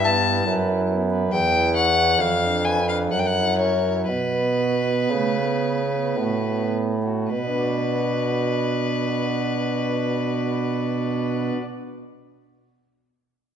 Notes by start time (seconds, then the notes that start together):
Already playing: G2 E4
0.04 B3 A5
0.26 E4
0.46 F#2 B4
0.69 E4
0.89 B3
1.11 B4
1.32 E2 G5
1.54 E4
1.76 C#5 F#5
1.97 E4
2.20 F2 F5
2.42 D4
2.65 B4 G#5
2.88 D4 F5
3.11 F#2 F#5
3.19 G5
3.27 F#5
3.36 E4
3.59 A#4 C#5
3.84 E4
4.08 B2 B4
4.33 B3
4.59 F#4
4.85 B3
5.10 C#3 A3
5.38 B3
5.91 B3
6.17 A2 F#4
6.45 B3
7.03 F#4
7.31 B2 B4
7.39 B3
7.45 D4
7.52 F#4
7.60 D5